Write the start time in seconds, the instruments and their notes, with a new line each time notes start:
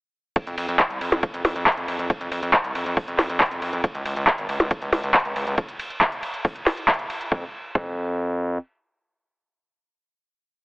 0.36 kick, closed hi-hat, ride
0.47 analog synth bass F2, closed hi-hat
0.58 analog synth bass F2, open hi-hat, ride
0.68 analog synth bass F2, closed hi-hat
0.79 kick, clap, closed hi-hat, ride
0.90 analog synth bass C2, closed hi-hat
1.01 analog synth bass F2, open hi-hat, ride
1.12 analog synth bass F2, closed hi-hat, percussion blips
1.23 kick, closed hi-hat, ride
1.34 analog synth bass F2, closed hi-hat
1.45 analog synth bass F2, open hi-hat, ride, percussion blips
1.56 analog synth bass F2, closed hi-hat
1.67 kick, clap, closed hi-hat, ride
1.72 closed hi-hat
1.77 analog synth bass F2, closed hi-hat
1.88 analog synth bass F2, open hi-hat, ride
1.99 analog synth bass F2, closed hi-hat
2.10 kick, closed hi-hat, ride
2.21 analog synth bass F2, closed hi-hat
2.32 analog synth bass F2, open hi-hat, ride
2.42 analog synth bass F2, closed hi-hat
2.53 kick, clap, closed hi-hat, ride
2.64 analog synth bass C2, closed hi-hat
2.75 analog synth bass F2, open hi-hat, ride
2.86 analog synth bass F2, closed hi-hat
2.97 kick, open hi-hat, ride
3.08 analog synth bass F2, closed hi-hat
3.19 analog synth bass F2, clap, open hi-hat, ride, percussion blips
3.29 analog synth bass F2, closed hi-hat
3.40 kick, clap, closed hi-hat, ride
3.46 closed hi-hat
3.51 analog synth bass F2, closed hi-hat
3.62 analog synth bass F2, open hi-hat, ride
3.73 analog synth bass F2, closed hi-hat
3.84 kick, closed hi-hat, ride
3.95 analog synth bass C#2, closed hi-hat
4.06 analog synth bass C#2, open hi-hat, ride
4.16 analog synth bass C#2, closed hi-hat
4.27 kick, clap, closed hi-hat, ride
4.38 analog synth bass G#1, closed hi-hat
4.49 analog synth bass C#2, open hi-hat, ride
4.60 analog synth bass C#2, closed hi-hat, percussion blips
4.71 kick, closed hi-hat, ride
4.82 analog synth bass C#2, closed hi-hat
4.93 analog synth bass C#2, open hi-hat, ride, percussion blips
5.03 analog synth bass C#2, closed hi-hat
5.14 kick, clap, closed hi-hat, ride
5.20 closed hi-hat
5.25 analog synth bass C#2, closed hi-hat
5.36 analog synth bass C#2, open hi-hat, ride
5.47 analog synth bass C#2, closed hi-hat
5.58 kick, closed hi-hat, ride
5.69 closed hi-hat
5.79 open hi-hat, ride
5.90 closed hi-hat
6.01 kick, clap, closed hi-hat, ride
6.12 closed hi-hat
6.23 open hi-hat, ride
6.34 closed hi-hat
6.45 kick, open hi-hat, ride
6.56 closed hi-hat
6.67 clap, open hi-hat, ride, percussion blips
6.77 closed hi-hat
6.88 kick, clap, closed hi-hat, ride
6.94 closed hi-hat
6.99 closed hi-hat
7.10 open hi-hat, ride
7.21 closed hi-hat
7.32 analog synth bass F2, kick
7.75 analog synth bass F2, kick